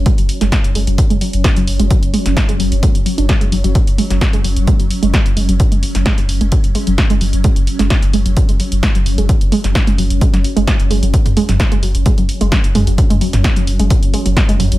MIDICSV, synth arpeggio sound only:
0, 0, Header, 1, 2, 480
1, 0, Start_track
1, 0, Tempo, 461538
1, 61, Time_signature, 4, 2, 24, 8
1, 15375, End_track
2, 0, Start_track
2, 0, Title_t, "Synth arpeggio sound"
2, 0, Program_c, 0, 84
2, 62, Note_on_c, 0, 56, 94
2, 89, Note_off_c, 0, 56, 0
2, 188, Note_on_c, 0, 54, 78
2, 229, Note_off_c, 0, 54, 0
2, 428, Note_on_c, 0, 56, 98
2, 453, Note_off_c, 0, 56, 0
2, 543, Note_on_c, 0, 54, 85
2, 588, Note_off_c, 0, 54, 0
2, 782, Note_on_c, 0, 56, 102
2, 809, Note_off_c, 0, 56, 0
2, 908, Note_on_c, 0, 54, 75
2, 949, Note_off_c, 0, 54, 0
2, 1147, Note_on_c, 0, 56, 102
2, 1172, Note_off_c, 0, 56, 0
2, 1262, Note_on_c, 0, 54, 85
2, 1307, Note_off_c, 0, 54, 0
2, 1502, Note_on_c, 0, 56, 98
2, 1529, Note_off_c, 0, 56, 0
2, 1628, Note_on_c, 0, 54, 76
2, 1669, Note_off_c, 0, 54, 0
2, 1868, Note_on_c, 0, 56, 97
2, 1892, Note_off_c, 0, 56, 0
2, 1983, Note_on_c, 0, 54, 78
2, 2028, Note_off_c, 0, 54, 0
2, 2222, Note_on_c, 0, 56, 99
2, 2249, Note_off_c, 0, 56, 0
2, 2348, Note_on_c, 0, 54, 70
2, 2389, Note_off_c, 0, 54, 0
2, 2586, Note_on_c, 0, 56, 104
2, 2612, Note_off_c, 0, 56, 0
2, 2702, Note_on_c, 0, 54, 80
2, 2747, Note_off_c, 0, 54, 0
2, 2941, Note_on_c, 0, 56, 101
2, 2969, Note_off_c, 0, 56, 0
2, 3066, Note_on_c, 0, 54, 76
2, 3108, Note_off_c, 0, 54, 0
2, 3180, Note_on_c, 0, 54, 85
2, 3226, Note_off_c, 0, 54, 0
2, 3305, Note_on_c, 0, 62, 95
2, 3368, Note_off_c, 0, 62, 0
2, 3420, Note_on_c, 0, 54, 79
2, 3489, Note_off_c, 0, 54, 0
2, 3545, Note_on_c, 0, 56, 106
2, 3587, Note_off_c, 0, 56, 0
2, 3660, Note_on_c, 0, 54, 80
2, 3688, Note_off_c, 0, 54, 0
2, 3786, Note_on_c, 0, 54, 102
2, 3849, Note_off_c, 0, 54, 0
2, 3902, Note_on_c, 0, 54, 81
2, 3947, Note_off_c, 0, 54, 0
2, 4141, Note_on_c, 0, 56, 94
2, 4169, Note_off_c, 0, 56, 0
2, 4267, Note_on_c, 0, 54, 71
2, 4309, Note_off_c, 0, 54, 0
2, 4507, Note_on_c, 0, 56, 100
2, 4532, Note_off_c, 0, 56, 0
2, 4622, Note_on_c, 0, 54, 82
2, 4667, Note_off_c, 0, 54, 0
2, 4861, Note_on_c, 0, 56, 101
2, 4889, Note_off_c, 0, 56, 0
2, 4986, Note_on_c, 0, 54, 74
2, 5028, Note_off_c, 0, 54, 0
2, 5226, Note_on_c, 0, 56, 100
2, 5251, Note_off_c, 0, 56, 0
2, 5341, Note_on_c, 0, 54, 81
2, 5387, Note_off_c, 0, 54, 0
2, 5581, Note_on_c, 0, 56, 97
2, 5609, Note_off_c, 0, 56, 0
2, 5707, Note_on_c, 0, 54, 77
2, 5748, Note_off_c, 0, 54, 0
2, 5946, Note_on_c, 0, 56, 104
2, 5972, Note_off_c, 0, 56, 0
2, 6061, Note_on_c, 0, 54, 73
2, 6107, Note_off_c, 0, 54, 0
2, 6300, Note_on_c, 0, 56, 104
2, 6328, Note_off_c, 0, 56, 0
2, 6427, Note_on_c, 0, 54, 74
2, 6469, Note_off_c, 0, 54, 0
2, 6667, Note_on_c, 0, 56, 99
2, 6692, Note_off_c, 0, 56, 0
2, 6780, Note_on_c, 0, 54, 81
2, 6826, Note_off_c, 0, 54, 0
2, 7021, Note_on_c, 0, 56, 109
2, 7049, Note_off_c, 0, 56, 0
2, 7145, Note_on_c, 0, 54, 78
2, 7188, Note_off_c, 0, 54, 0
2, 7386, Note_on_c, 0, 56, 110
2, 7412, Note_off_c, 0, 56, 0
2, 7500, Note_on_c, 0, 54, 77
2, 7546, Note_off_c, 0, 54, 0
2, 7739, Note_on_c, 0, 56, 102
2, 7768, Note_off_c, 0, 56, 0
2, 7865, Note_on_c, 0, 54, 73
2, 7908, Note_off_c, 0, 54, 0
2, 8105, Note_on_c, 0, 56, 104
2, 8131, Note_off_c, 0, 56, 0
2, 8221, Note_on_c, 0, 54, 86
2, 8267, Note_off_c, 0, 54, 0
2, 8460, Note_on_c, 0, 56, 102
2, 8488, Note_off_c, 0, 56, 0
2, 8586, Note_on_c, 0, 54, 77
2, 8628, Note_off_c, 0, 54, 0
2, 8827, Note_on_c, 0, 56, 98
2, 8852, Note_off_c, 0, 56, 0
2, 8943, Note_on_c, 0, 54, 77
2, 8988, Note_off_c, 0, 54, 0
2, 9181, Note_on_c, 0, 56, 95
2, 9209, Note_off_c, 0, 56, 0
2, 9308, Note_on_c, 0, 54, 80
2, 9349, Note_off_c, 0, 54, 0
2, 9548, Note_on_c, 0, 56, 102
2, 9572, Note_off_c, 0, 56, 0
2, 9662, Note_on_c, 0, 54, 81
2, 9707, Note_off_c, 0, 54, 0
2, 9902, Note_on_c, 0, 56, 103
2, 9929, Note_off_c, 0, 56, 0
2, 10028, Note_on_c, 0, 54, 77
2, 10069, Note_off_c, 0, 54, 0
2, 10268, Note_on_c, 0, 56, 101
2, 10293, Note_off_c, 0, 56, 0
2, 10383, Note_on_c, 0, 54, 75
2, 10428, Note_off_c, 0, 54, 0
2, 10622, Note_on_c, 0, 56, 102
2, 10649, Note_off_c, 0, 56, 0
2, 10746, Note_on_c, 0, 54, 81
2, 10788, Note_off_c, 0, 54, 0
2, 10987, Note_on_c, 0, 56, 101
2, 11012, Note_off_c, 0, 56, 0
2, 11102, Note_on_c, 0, 54, 79
2, 11147, Note_off_c, 0, 54, 0
2, 11341, Note_on_c, 0, 56, 105
2, 11369, Note_off_c, 0, 56, 0
2, 11467, Note_on_c, 0, 54, 78
2, 11509, Note_off_c, 0, 54, 0
2, 11583, Note_on_c, 0, 54, 82
2, 11628, Note_off_c, 0, 54, 0
2, 11823, Note_on_c, 0, 56, 102
2, 11850, Note_off_c, 0, 56, 0
2, 11947, Note_on_c, 0, 54, 72
2, 11989, Note_off_c, 0, 54, 0
2, 12187, Note_on_c, 0, 56, 100
2, 12212, Note_off_c, 0, 56, 0
2, 12302, Note_on_c, 0, 54, 75
2, 12347, Note_off_c, 0, 54, 0
2, 12542, Note_on_c, 0, 56, 98
2, 12569, Note_off_c, 0, 56, 0
2, 12667, Note_on_c, 0, 54, 77
2, 12709, Note_off_c, 0, 54, 0
2, 12906, Note_on_c, 0, 56, 102
2, 12932, Note_off_c, 0, 56, 0
2, 13022, Note_on_c, 0, 54, 81
2, 13067, Note_off_c, 0, 54, 0
2, 13261, Note_on_c, 0, 56, 102
2, 13289, Note_off_c, 0, 56, 0
2, 13387, Note_on_c, 0, 54, 76
2, 13429, Note_off_c, 0, 54, 0
2, 13627, Note_on_c, 0, 56, 100
2, 13652, Note_off_c, 0, 56, 0
2, 13741, Note_on_c, 0, 54, 77
2, 13787, Note_off_c, 0, 54, 0
2, 13981, Note_on_c, 0, 56, 101
2, 14009, Note_off_c, 0, 56, 0
2, 14107, Note_on_c, 0, 54, 73
2, 14148, Note_off_c, 0, 54, 0
2, 14346, Note_on_c, 0, 56, 100
2, 14372, Note_off_c, 0, 56, 0
2, 14461, Note_on_c, 0, 54, 82
2, 14507, Note_off_c, 0, 54, 0
2, 14702, Note_on_c, 0, 56, 102
2, 14729, Note_off_c, 0, 56, 0
2, 14827, Note_on_c, 0, 54, 77
2, 14868, Note_off_c, 0, 54, 0
2, 15067, Note_on_c, 0, 56, 105
2, 15092, Note_off_c, 0, 56, 0
2, 15182, Note_on_c, 0, 54, 75
2, 15227, Note_off_c, 0, 54, 0
2, 15375, End_track
0, 0, End_of_file